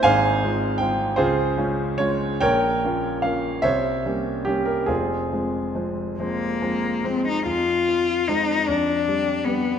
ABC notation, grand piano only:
X:1
M:6/8
L:1/16
Q:3/8=49
K:Fm
V:1 name="Grand piano"
[cfa]4 g2 [FAc]4 d2 | [Bdg]4 f2 [cd=e]4 G B | [CFA]6 z6 | z12 |]
V:2 name="Grand piano" clef=bass
[A,,,A,,]2 [A,CF]2 [A,CF]2 D,,2 [A,DF]2 [A,DF]2 | B,,,2 [B,DF]2 [B,DF]2 C,,2 [G,B,D]2 [G,B,D]2 | [F,,,F,,]2 [F,A,C]2 [F,A,C]2 [F,A,C]2 [F,A,C]2 [F,A,C]2 | F,,2 F,2 [A,C]2 F,,2 G,2 [G,=B,]2 |]